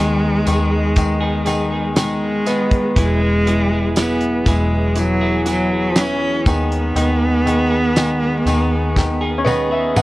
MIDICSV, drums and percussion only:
0, 0, Header, 1, 2, 480
1, 0, Start_track
1, 0, Tempo, 1000000
1, 1422, Time_signature, 4, 2, 24, 8
1, 4810, End_track
2, 0, Start_track
2, 0, Title_t, "Drums"
2, 223, Note_on_c, 9, 42, 67
2, 224, Note_on_c, 9, 54, 51
2, 271, Note_off_c, 9, 42, 0
2, 272, Note_off_c, 9, 54, 0
2, 461, Note_on_c, 9, 42, 80
2, 463, Note_on_c, 9, 36, 85
2, 467, Note_on_c, 9, 54, 46
2, 509, Note_off_c, 9, 42, 0
2, 511, Note_off_c, 9, 36, 0
2, 515, Note_off_c, 9, 54, 0
2, 701, Note_on_c, 9, 42, 65
2, 707, Note_on_c, 9, 54, 46
2, 749, Note_off_c, 9, 42, 0
2, 755, Note_off_c, 9, 54, 0
2, 942, Note_on_c, 9, 42, 85
2, 942, Note_on_c, 9, 54, 80
2, 944, Note_on_c, 9, 38, 118
2, 990, Note_off_c, 9, 42, 0
2, 990, Note_off_c, 9, 54, 0
2, 992, Note_off_c, 9, 38, 0
2, 1183, Note_on_c, 9, 54, 45
2, 1184, Note_on_c, 9, 42, 68
2, 1185, Note_on_c, 9, 38, 34
2, 1231, Note_off_c, 9, 54, 0
2, 1232, Note_off_c, 9, 42, 0
2, 1233, Note_off_c, 9, 38, 0
2, 1303, Note_on_c, 9, 36, 93
2, 1303, Note_on_c, 9, 42, 51
2, 1351, Note_off_c, 9, 36, 0
2, 1351, Note_off_c, 9, 42, 0
2, 1423, Note_on_c, 9, 36, 114
2, 1424, Note_on_c, 9, 42, 86
2, 1424, Note_on_c, 9, 54, 31
2, 1471, Note_off_c, 9, 36, 0
2, 1472, Note_off_c, 9, 42, 0
2, 1472, Note_off_c, 9, 54, 0
2, 1667, Note_on_c, 9, 42, 79
2, 1715, Note_off_c, 9, 42, 0
2, 1901, Note_on_c, 9, 54, 75
2, 1904, Note_on_c, 9, 42, 85
2, 1906, Note_on_c, 9, 38, 98
2, 1949, Note_off_c, 9, 54, 0
2, 1952, Note_off_c, 9, 42, 0
2, 1954, Note_off_c, 9, 38, 0
2, 2019, Note_on_c, 9, 42, 48
2, 2067, Note_off_c, 9, 42, 0
2, 2141, Note_on_c, 9, 36, 88
2, 2141, Note_on_c, 9, 42, 72
2, 2142, Note_on_c, 9, 54, 52
2, 2189, Note_off_c, 9, 36, 0
2, 2189, Note_off_c, 9, 42, 0
2, 2190, Note_off_c, 9, 54, 0
2, 2378, Note_on_c, 9, 42, 81
2, 2387, Note_on_c, 9, 54, 42
2, 2426, Note_off_c, 9, 42, 0
2, 2435, Note_off_c, 9, 54, 0
2, 2620, Note_on_c, 9, 42, 65
2, 2622, Note_on_c, 9, 54, 47
2, 2668, Note_off_c, 9, 42, 0
2, 2670, Note_off_c, 9, 54, 0
2, 2859, Note_on_c, 9, 42, 78
2, 2859, Note_on_c, 9, 54, 76
2, 2861, Note_on_c, 9, 38, 120
2, 2907, Note_off_c, 9, 42, 0
2, 2907, Note_off_c, 9, 54, 0
2, 2909, Note_off_c, 9, 38, 0
2, 3101, Note_on_c, 9, 42, 62
2, 3102, Note_on_c, 9, 36, 98
2, 3102, Note_on_c, 9, 54, 47
2, 3149, Note_off_c, 9, 42, 0
2, 3150, Note_off_c, 9, 36, 0
2, 3150, Note_off_c, 9, 54, 0
2, 3225, Note_on_c, 9, 42, 48
2, 3273, Note_off_c, 9, 42, 0
2, 3342, Note_on_c, 9, 42, 91
2, 3342, Note_on_c, 9, 54, 30
2, 3390, Note_off_c, 9, 42, 0
2, 3390, Note_off_c, 9, 54, 0
2, 3586, Note_on_c, 9, 42, 79
2, 3634, Note_off_c, 9, 42, 0
2, 3822, Note_on_c, 9, 42, 88
2, 3823, Note_on_c, 9, 54, 76
2, 3825, Note_on_c, 9, 38, 95
2, 3870, Note_off_c, 9, 42, 0
2, 3871, Note_off_c, 9, 54, 0
2, 3873, Note_off_c, 9, 38, 0
2, 4063, Note_on_c, 9, 42, 70
2, 4064, Note_on_c, 9, 54, 48
2, 4111, Note_off_c, 9, 42, 0
2, 4112, Note_off_c, 9, 54, 0
2, 4303, Note_on_c, 9, 36, 81
2, 4306, Note_on_c, 9, 38, 56
2, 4307, Note_on_c, 9, 54, 45
2, 4351, Note_off_c, 9, 36, 0
2, 4354, Note_off_c, 9, 38, 0
2, 4355, Note_off_c, 9, 54, 0
2, 4541, Note_on_c, 9, 48, 66
2, 4546, Note_on_c, 9, 54, 46
2, 4589, Note_off_c, 9, 48, 0
2, 4594, Note_off_c, 9, 54, 0
2, 4782, Note_on_c, 9, 54, 80
2, 4783, Note_on_c, 9, 47, 90
2, 4810, Note_off_c, 9, 47, 0
2, 4810, Note_off_c, 9, 54, 0
2, 4810, End_track
0, 0, End_of_file